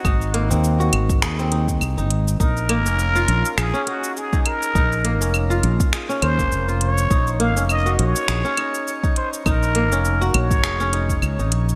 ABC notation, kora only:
X:1
M:4/4
L:1/16
Q:"Swing 16ths" 1/4=102
K:Bbm
V:1 name="Kora"
E2 B, C2 G z2 A C E z2 E z2 | E2 B, D2 F z2 A D E z2 E z2 | E2 B, D2 F z2 A D B B, z F z2 | E2 B, D2 G z2 A D E z2 E z2 |
E2 B, D2 G z2 A D E z2 E z2 |]